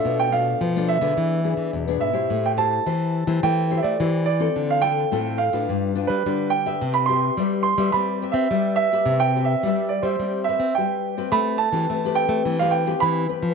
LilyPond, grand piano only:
\new Staff \with { instrumentName = "Grand piano" } { \time 4/4 \key a \minor \tempo 4 = 106 e''16 g''16 f''4 e''4. r8 e''8~ | e''16 g''16 a''4. g''8~ g''32 e''32 d''8. d''8~ | d''16 f''16 g''4 f''4~ f''16 b'8. g''8~ | g''16 b''16 c'''4 c'''8 b''8. e''8. e''8~ |
e''16 g''8 e''8. d''16 c''8. e''8 g''4 | b''8 a''4 g''8. f''16 g''8 b''4 | }